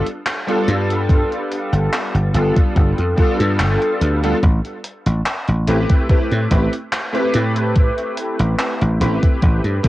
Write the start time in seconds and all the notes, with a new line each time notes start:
0.06 closed hi-hat
0.26 clap, closed hi-hat
0.47 G3 B3 D4 F4 A4, closed hi-hat
0.68 G2, closed hi-hat
0.90 closed hi-hat
1.09 kick, closed hi-hat
1.32 closed hi-hat
1.52 closed hi-hat
1.73 G1, closed hi-hat
1.93 clap, closed hi-hat
2.14 G1, closed hi-hat
2.34 G1 G3 B3 D4 F4 A4, closed hi-hat
2.56 kick, closed hi-hat
2.76 G1, kick, closed hi-hat
2.98 F2, closed hi-hat
3.16 G3 B3 D4 F4 A4, kick, closed hi-hat
3.40 G2, closed hi-hat
3.60 G1, clap, closed hi-hat
3.82 closed hi-hat
4.01 D2, closed hi-hat
4.23 G3 B3 D4 F4 A4, closed hi-hat
4.43 A1, kick, closed hi-hat
4.65 closed hi-hat
4.84 closed hi-hat
5.06 A1, closed hi-hat
5.26 clap, closed hi-hat
5.48 A1, closed hi-hat
5.68 A1 A3 C4 E4 G4 B4, closed hi-hat
5.90 kick, closed hi-hat
6.09 A3 C4 E4 G4 B4, muted slap bass stroke, kick, closed hi-hat
6.32 A2, closed hi-hat
6.50 A1 A3 C4 E4 G4 B4, kick, closed hi-hat
6.73 closed hi-hat
6.93 clap, closed hi-hat
7.13 A3 C4 E4 G4 B4, closed hi-hat
7.34 A2, closed hi-hat
7.56 closed hi-hat
7.76 kick, closed hi-hat
7.98 closed hi-hat
8.17 closed hi-hat
8.39 A1, closed hi-hat
8.59 clap, closed hi-hat
8.81 A1, closed hi-hat
9.00 A1 A3 C4 E4 G4 B4, closed hi-hat
9.23 kick, closed hi-hat
9.42 A1, kick, closed hi-hat
9.64 G2, closed hi-hat
9.83 A3 C4 E4, kick, closed hi-hat